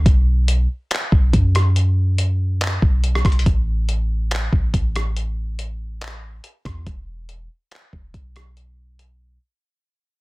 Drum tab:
HH |x-----------x-----------x-----------x-----x-----|x-----------x-----------x-----------x-----x-x-x-|x-----------x-----------x-----------x-----x-----|x-----------x-----------x-----------x-----x-----|
CP |------------------------x-----------------------|------------------------x-----------------------|------------------------x-----------------------|------------------------x-----------------------|
SD |------------------------------------------r-----|---------------------------------------r--r-----|------------------------------------------r-----|------------------------------------------r-----|
BD |o-----------------------------o-----o-----------|------------------------------o-----------o-----|o-----------------------------o-----o-----------|------------------------------------------o-----|

HH |x-----------x-----------x-----------x-----x-----|x-----------x-----------------------------------|
CP |------------------------x-----------------------|------------------------------------------------|
SD |------------------------------------------r-----|------------------------------------------------|
BD |o-----------------------------o-----o-----------|------------------------------------------------|